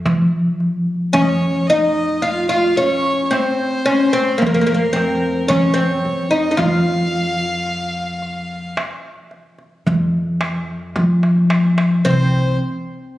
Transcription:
0.06 1.11 F3 medium
0.06 darbuka dum medium
0.60 darbuka ka soft
1.13 3.29 F2 medium
1.13 1.69 C#4 medium
1.13 1.23 C#5 medium
1.13 darbuka dum medium
1.22 1.31 D#5 medium
1.29 1.69 C#5 medium
1.68 2.20 D#4 medium
1.68 2.24 D#5 medium
2.22 2.48 F4 medium
2.22 2.49 F5 medium
2.22 darbuka ka soft
2.49 2.77 F4 medium
2.49 2.78 F5 medium
2.76 3.34 C#4 medium
2.76 3.25 C#5 medium
3.25 3.33 C#5 medium
3.31 3.88 C4 medium
3.31 4.42 C5 medium
3.31 darbuka tek medium
3.86 4.13 C#4 medium
3.86 darbuka ka soft
4.13 4.42 C4 medium
4.38 5.47 F2 medium
4.38 4.45 A#3 medium
4.38 5.53 A#4 medium
4.42 darbuka dum medium
4.46 4.53 A#3 medium
4.54 4.60 A#3 medium
4.61 4.65 A#3 medium
4.67 4.73 A#3 medium
4.74 4.85 A#3 medium
4.93 5.51 C4 medium
4.93 darbuka tek medium
5.48 6.01 F2 medium
5.48 5.78 C#4 medium
5.48 6.33 C#5 medium
5.48 darbuka dum medium
5.74 6.32 C4 medium
6.05 6.56 F2 medium
6.05 darbuka ka soft
6.31 6.50 D#4 medium
6.31 6.59 D#5 medium
6.51 6.57 D#4 medium
6.57 8.74 F2 medium
6.57 8.73 F4 medium
6.57 8.74 F5 medium
6.57 darbuka dum medium
6.87 darbuka ka soft
7.69 darbuka ka soft
8.22 darbuka ka soft
8.77 darbuka tek medium
9.31 darbuka ka soft
9.59 darbuka ka soft
9.87 10.92 F2 medium
9.87 darbuka dum medium
10.41 darbuka tek medium
10.96 12.01 F3 medium
10.96 darbuka tek medium
11.23 darbuka ka medium
11.50 darbuka tek medium
11.78 darbuka ka medium
12.05 12.56 C2 medium
12.05 12.56 C4 medium
12.05 12.56 C5 medium
12.05 darbuka dum medium

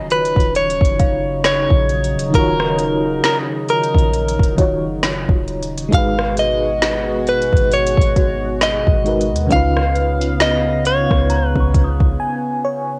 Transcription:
0.00 0.34 D#1 loud
0.00 5.88 C#3 medium
0.00 2.28 D#3 medium
0.00 5.88 F#3 medium
0.00 2.29 D#4 medium
0.00 5.88 D#4 loud
0.00 2.31 F4 medium
0.00 2.32 F#4 medium
0.00 2.33 C#5 medium
0.00 2.37 D#5 medium
0.00 2.64 G#5 medium
0.00 2.87 A#5 medium
0.10 0.56 B4 medium
0.10 closed hi-hat soft
0.25 closed hi-hat soft
0.36 0.79 D#1 loud
0.36 kick medium
0.36 closed hi-hat medium
0.55 1.44 C#5 loud
0.55 closed hi-hat medium
0.70 closed hi-hat medium
0.81 1.67 F#1 loud
0.81 kick medium
0.81 closed hi-hat medium
0.99 4.16 F5 medium
0.99 kick medium
0.99 closed hi-hat medium
1.44 2.35 C#5 medium
1.44 snare loud
1.44 closed hi-hat medium
1.70 2.17 A#1 loud
1.70 kick medium
1.89 closed hi-hat soft
2.04 closed hi-hat medium
2.15 2.33 C#1 loud
2.15 closed hi-hat medium
2.30 4.52 D#3 medium
2.30 4.53 D#4 medium
2.30 kick loud
2.30 closed hi-hat medium
2.34 3.20 D#1 loud
2.34 4.54 F4 medium
2.34 4.56 F#4 medium
2.34 3.24 A#4 loud
2.39 4.57 C#5 medium
2.60 cross-stick loud
2.79 closed hi-hat medium
3.24 3.37 A#4 medium
3.24 snare loud
3.24 closed hi-hat medium
3.68 4.55 A#4 medium
3.68 closed hi-hat soft
3.83 closed hi-hat medium
3.94 4.37 A#1 loud
3.94 kick medium
3.94 closed hi-hat medium
4.13 closed hi-hat medium
4.28 closed hi-hat medium
4.39 4.85 D#1 loud
4.39 kick medium
4.39 closed hi-hat medium
4.57 5.92 D#3 medium
4.57 5.90 D#4 soft
4.57 5.93 F4 soft
4.57 5.92 F#4 soft
4.57 6.33 C#5 medium
4.57 kick medium
4.57 closed hi-hat medium
4.61 5.94 C#5 medium
4.84 5.26 F#1 loud
5.03 snare loud
5.03 closed hi-hat medium
5.29 5.90 D#1 loud
5.29 kick medium
5.48 closed hi-hat soft
5.62 closed hi-hat medium
5.78 closed hi-hat medium
5.89 7.49 G#1 loud
5.89 9.47 B2 medium
5.89 9.00 G#3 medium
5.89 9.47 G#3 medium
5.89 9.01 D#4 medium
5.89 9.47 F#4 medium
5.89 kick loud
5.89 closed hi-hat medium
5.93 9.02 F#4 medium
5.93 9.03 G#4 medium
5.93 6.35 F5 loud
5.98 9.04 B4 medium
6.19 cross-stick loud
6.37 7.30 D#5 loud
6.37 closed hi-hat medium
6.82 snare loud
6.82 closed hi-hat medium
7.27 7.74 B4 medium
7.27 closed hi-hat soft
7.42 closed hi-hat soft
7.53 7.96 G#1 loud
7.53 kick medium
7.53 closed hi-hat medium
7.72 8.63 C#5 medium
7.72 closed hi-hat medium
7.87 closed hi-hat medium
7.97 8.83 G#1 loud
7.97 kick medium
8.01 closed hi-hat medium
8.16 9.91 F#4 medium
8.16 kick medium
8.16 closed hi-hat medium
8.61 9.47 D#5 medium
8.61 snare loud
8.61 closed hi-hat medium
8.87 9.33 G#1 loud
8.87 kick medium
9.04 9.50 G#3 medium
9.04 9.50 D#4 soft
9.04 9.51 F#4 soft
9.04 9.51 A#4 soft
9.04 closed hi-hat soft
9.09 9.52 B4 medium
9.21 closed hi-hat medium
9.32 9.50 D#2 loud
9.32 closed hi-hat medium
9.47 12.99 C#3 medium
9.47 12.99 B3 medium
9.47 12.99 C#4 medium
9.47 12.99 F5 medium
9.47 kick loud
9.51 11.07 C#2 loud
9.51 12.99 D#4 medium
9.51 12.99 F4 medium
9.51 10.41 F5 loud
9.51 closed hi-hat medium
9.56 12.99 B4 medium
9.77 cross-stick medium
9.95 closed hi-hat soft
10.21 closed hi-hat medium
10.40 10.86 D#5 medium
10.40 snare loud
10.40 closed hi-hat medium
10.85 11.48 C#5 medium
10.85 closed hi-hat medium
11.11 11.54 C#2 loud
11.11 kick medium
11.11 cross-stick medium
11.30 12.99 A#5 medium
11.30 closed hi-hat medium
11.48 11.71 B4 medium
11.56 12.17 C#2 medium
11.56 kick loud
11.60 12.99 C#6 medium
11.74 kick medium
11.74 closed hi-hat medium
11.84 12.99 D#6 medium
12.00 kick loud
12.20 12.61 G#5 medium
12.65 12.99 C#5 medium

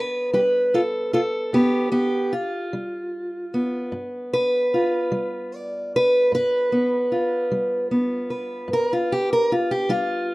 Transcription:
0.00 1.54 B3 soft
0.00 0.33 B4 loud
0.33 1.05 G3 medium
0.33 0.39 G4 medium
0.33 0.73 B4 medium
0.74 0.80 F4 medium
0.74 1.13 A4 medium
1.13 1.19 F4 medium
1.13 1.53 A4 medium
1.53 2.25 G2 medium
1.53 1.90 B3 medium
1.53 1.91 G4 medium
1.92 2.32 B3 medium
1.92 2.32 G4 medium
2.33 3.92 F4 medium
2.73 3.45 G3 medium
3.54 6.72 B3 medium
3.92 4.64 G2 medium
4.33 5.56 B4 loud
4.74 7.11 F4 soft
5.12 5.84 G3 medium
5.56 5.94 D5 medium
5.96 6.33 B4 loud
6.32 7.04 G2 medium
6.32 7.93 B4 loud
6.72 7.91 B3 soft
7.12 8.71 F4 soft
7.52 8.23 G3 medium
7.91 10.35 B3 medium
8.30 8.73 B4 soft
8.68 9.41 G2 medium
8.73 8.92 A#4 loud
8.93 9.12 F4 medium
9.12 9.31 G4 medium
9.33 9.52 A#4 loud
9.52 9.71 F4 medium
9.71 9.91 G4 loud
9.89 10.35 G3 medium
9.89 10.35 F4 loud

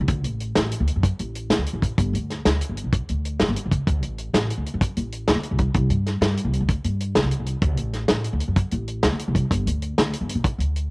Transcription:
0.01 0.08 C2 medium
0.08 0.25 D2 loud
0.08 kick medium
0.08 closed hi-hat medium
0.24 0.54 A1 medium
0.24 closed hi-hat medium
0.40 closed hi-hat soft
0.55 0.71 A1 medium
0.55 snare medium
0.55 closed hi-hat medium
0.71 closed hi-hat medium
0.80 0.95 D2 medium
0.87 closed hi-hat medium
0.96 1.10 F#2 medium
1.03 kick medium
1.03 closed hi-hat medium
1.19 1.48 A1 medium
1.19 closed hi-hat soft
1.35 closed hi-hat soft
1.50 1.58 D2 medium
1.50 snare medium
1.50 closed hi-hat medium
1.58 1.66 D2 medium
1.66 closed hi-hat medium
1.73 1.88 A1 medium
1.82 kick medium
1.82 closed hi-hat soft
1.98 2.15 G1 medium
1.98 kick medium
1.98 closed hi-hat medium
2.13 2.42 D2 medium
2.13 closed hi-hat soft
2.30 snare soft
2.30 closed hi-hat soft
2.45 2.60 D2 medium
2.45 snare medium
2.45 closed hi-hat medium
2.61 closed hi-hat medium
2.69 2.84 G1 medium
2.77 closed hi-hat soft
2.84 2.99 B1 medium
2.93 kick medium
2.93 closed hi-hat medium
3.09 3.38 D2 medium
3.09 closed hi-hat soft
3.25 closed hi-hat soft
3.40 3.47 G1 medium
3.40 snare medium
3.40 closed hi-hat medium
3.48 3.55 G1 medium
3.56 closed hi-hat medium
3.66 3.79 C#2 medium
3.72 kick medium
3.72 closed hi-hat soft
3.87 4.03 D2 medium
3.87 kick medium
3.87 closed hi-hat medium
4.03 4.31 A1 medium
4.03 closed hi-hat medium
4.18 closed hi-hat soft
4.34 4.48 A1 medium
4.34 snare medium
4.34 closed hi-hat medium
4.50 closed hi-hat medium
4.57 4.72 D2 medium
4.66 closed hi-hat soft
4.74 4.88 F#2 medium
4.81 kick medium
4.81 closed hi-hat medium
4.97 5.26 A1 medium
4.97 closed hi-hat soft
5.12 closed hi-hat soft
5.28 5.35 D2 medium
5.28 snare medium
5.28 closed hi-hat medium
5.35 5.43 D2 medium
5.43 closed hi-hat soft
5.51 5.66 C2 medium
5.59 kick medium
5.59 closed hi-hat soft
5.74 5.91 C2 loud
5.74 kick medium
5.74 closed hi-hat medium
5.90 6.19 G2 medium
5.90 closed hi-hat medium
6.07 snare soft
6.07 closed hi-hat soft
6.21 6.36 G2 medium
6.21 snare medium
6.21 closed hi-hat medium
6.37 closed hi-hat medium
6.44 6.59 C2 medium
6.53 closed hi-hat soft
6.61 6.75 D2 medium
6.69 kick medium
6.69 closed hi-hat medium
6.84 7.13 G2 medium
6.84 closed hi-hat soft
7.00 closed hi-hat soft
7.15 7.23 C2 medium
7.15 snare medium
7.15 closed hi-hat medium
7.24 7.31 C2 medium
7.31 closed hi-hat medium
7.40 7.54 C2 medium
7.46 closed hi-hat soft
7.62 7.77 D2 loud
7.62 kick medium
7.62 closed hi-hat medium
7.77 8.06 A1 medium
7.77 closed hi-hat medium
7.93 snare soft
7.93 closed hi-hat soft
8.08 8.24 A1 medium
8.08 snare medium
8.08 closed hi-hat medium
8.24 closed hi-hat soft
8.33 8.47 D2 medium
8.40 closed hi-hat soft
8.48 8.63 F#2 medium
8.56 kick medium
8.56 closed hi-hat medium
8.71 9.01 A1 medium
8.71 closed hi-hat soft
8.88 closed hi-hat soft
9.03 9.11 D2 medium
9.03 snare medium
9.03 closed hi-hat medium
9.12 9.19 D2 medium
9.19 closed hi-hat medium
9.28 9.42 C2 medium
9.35 kick medium
9.35 closed hi-hat soft
9.51 9.68 G1 medium
9.51 kick medium
9.51 closed hi-hat medium
9.67 9.95 D2 medium
9.67 closed hi-hat medium
9.82 closed hi-hat soft
9.98 10.12 D2 medium
9.98 snare medium
9.98 closed hi-hat medium
10.13 closed hi-hat medium
10.21 10.34 G1 medium
10.29 closed hi-hat medium
10.35 10.50 B1 medium
10.44 kick medium
10.44 closed hi-hat medium
10.58 10.88 D2 medium
10.58 closed hi-hat soft
10.76 closed hi-hat soft

